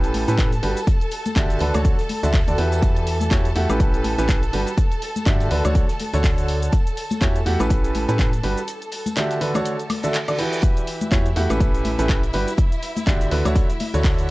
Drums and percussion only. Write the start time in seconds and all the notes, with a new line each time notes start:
0.04 closed hi-hat, tambourine, shaker
0.14 snare, closed hi-hat, open hi-hat, high conga
0.28 snare, closed hi-hat, tambourine, shaker
0.38 kick, snare, clap, closed hi-hat, tambourine, shaker
0.53 closed hi-hat, tambourine, shaker
0.63 closed hi-hat, open hi-hat
0.77 closed hi-hat, tambourine, shaker
0.87 kick, closed hi-hat, tambourine, shaker
1.01 closed hi-hat, tambourine, shaker
1.11 closed hi-hat, open hi-hat
1.25 closed hi-hat, tambourine, high conga, shaker
1.36 kick, snare, clap, closed hi-hat, tambourine, shaker
1.50 snare, closed hi-hat, tambourine, shaker
1.59 closed hi-hat, open hi-hat
1.74 closed hi-hat, tambourine, high conga, high woodblock, shaker
1.85 kick, closed hi-hat, tambourine, shaker
1.99 snare, closed hi-hat, tambourine, shaker
2.09 closed hi-hat, open hi-hat, high conga
2.23 snare, closed hi-hat, tambourine, shaker
2.33 kick, snare, clap, closed hi-hat, open hi-hat, shaker
2.47 closed hi-hat, tambourine, shaker
2.58 closed hi-hat, open hi-hat
2.72 closed hi-hat, tambourine, shaker
2.82 kick, closed hi-hat, tambourine, shaker
2.96 closed hi-hat, tambourine, shaker
3.07 closed hi-hat, open hi-hat
3.21 closed hi-hat, tambourine, high conga, shaker
3.31 kick, snare, clap, closed hi-hat, tambourine, shaker
3.45 closed hi-hat, tambourine, shaker
3.56 closed hi-hat, open hi-hat
3.69 closed hi-hat, tambourine, high conga, high woodblock, shaker
3.80 kick, closed hi-hat, tambourine, shaker
3.94 closed hi-hat, tambourine, shaker
4.04 snare, closed hi-hat, open hi-hat, high conga
4.18 snare, closed hi-hat, tambourine, shaker
4.29 kick, snare, clap, closed hi-hat, tambourine, shaker
4.43 closed hi-hat, tambourine, shaker
4.53 closed hi-hat, open hi-hat
4.67 closed hi-hat, tambourine, shaker
4.77 kick, closed hi-hat, tambourine, shaker
4.91 closed hi-hat, tambourine, shaker
5.02 closed hi-hat, open hi-hat
5.16 closed hi-hat, tambourine, high conga, shaker
5.26 kick, snare, clap, closed hi-hat, tambourine, shaker
5.40 snare, closed hi-hat, tambourine, shaker
5.51 closed hi-hat, open hi-hat
5.65 closed hi-hat, tambourine, high conga, high woodblock, shaker
5.75 kick, closed hi-hat, tambourine, shaker
5.89 snare, closed hi-hat, tambourine, shaker
6.00 closed hi-hat, open hi-hat, high conga
6.14 snare, closed hi-hat, tambourine, shaker
6.24 kick, snare, clap, closed hi-hat, open hi-hat, shaker
6.38 closed hi-hat, tambourine, shaker
6.48 closed hi-hat, open hi-hat
6.62 closed hi-hat, tambourine, shaker
6.72 kick, closed hi-hat, tambourine, shaker
6.86 closed hi-hat, tambourine, shaker
6.97 closed hi-hat, open hi-hat
7.10 closed hi-hat, tambourine, high conga, shaker
7.21 kick, snare, clap, closed hi-hat, shaker
7.36 closed hi-hat, tambourine, shaker
7.46 closed hi-hat, open hi-hat
7.59 closed hi-hat, tambourine, high conga, high woodblock, shaker
7.70 kick, closed hi-hat, tambourine, shaker
7.84 closed hi-hat, tambourine, shaker
7.95 snare, closed hi-hat, open hi-hat, high conga
8.08 snare, closed hi-hat, tambourine, shaker
8.18 kick, snare, clap, closed hi-hat, tambourine, shaker
8.33 closed hi-hat, tambourine, shaker
8.43 closed hi-hat, open hi-hat
8.57 closed hi-hat, tambourine, shaker
8.68 closed hi-hat, tambourine, shaker
8.82 closed hi-hat, tambourine, shaker
8.92 closed hi-hat, open hi-hat
9.06 closed hi-hat, tambourine, high conga, shaker
9.16 snare, clap, closed hi-hat, tambourine, shaker
9.31 snare, closed hi-hat, tambourine, shaker
9.41 closed hi-hat, open hi-hat
9.54 closed hi-hat, tambourine, high conga, high woodblock, shaker
9.65 closed hi-hat, tambourine, shaker
9.79 closed hi-hat, tambourine, shaker
9.90 closed hi-hat, open hi-hat, high conga, high woodblock
10.03 closed hi-hat, tambourine, shaker
10.14 clap, closed hi-hat, tambourine, shaker
10.28 closed hi-hat, tambourine, high woodblock, shaker
10.39 closed hi-hat, open hi-hat
10.52 closed hi-hat, tambourine, shaker
10.63 kick, closed hi-hat, tambourine, shaker
10.76 closed hi-hat, tambourine, shaker
10.87 closed hi-hat, open hi-hat
11.01 closed hi-hat, tambourine, high conga, shaker
11.11 kick, snare, clap, closed hi-hat, tambourine, shaker
11.25 closed hi-hat, tambourine, shaker
11.36 closed hi-hat, open hi-hat
11.50 closed hi-hat, tambourine, high conga, high woodblock, shaker
11.60 kick, closed hi-hat, tambourine, shaker
11.75 closed hi-hat, tambourine, shaker
11.85 snare, closed hi-hat, open hi-hat, high conga
11.99 snare, closed hi-hat, tambourine, shaker
12.09 kick, snare, clap, closed hi-hat, tambourine, shaker
12.23 closed hi-hat, tambourine, shaker
12.33 closed hi-hat, open hi-hat
12.47 closed hi-hat, tambourine, shaker
12.57 kick, closed hi-hat, tambourine, shaker
12.72 closed hi-hat, tambourine, shaker
12.82 closed hi-hat, open hi-hat
12.96 closed hi-hat, tambourine, high conga, shaker
13.07 kick, snare, clap, closed hi-hat, shaker
13.20 snare, closed hi-hat, tambourine, shaker
13.31 closed hi-hat, open hi-hat
13.45 closed hi-hat, tambourine, high conga, high woodblock, shaker
13.55 kick, closed hi-hat, tambourine, shaker
13.69 snare, closed hi-hat, tambourine, shaker
13.80 closed hi-hat, open hi-hat, high conga
13.94 snare, closed hi-hat, tambourine, shaker
14.04 kick, snare, clap, closed hi-hat, open hi-hat, tambourine, shaker
14.18 closed hi-hat, tambourine, shaker